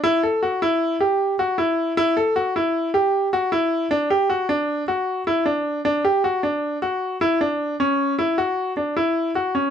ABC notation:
X:1
M:5/4
L:1/8
Q:1/4=155
K:D
V:1 name="Grand piano"
E A F E2 G2 F E2 | E A F E2 G2 F E2 | D G F D2 F2 E D2 | D G F D2 F2 E D2 |
C2 E F2 D E2 F C |]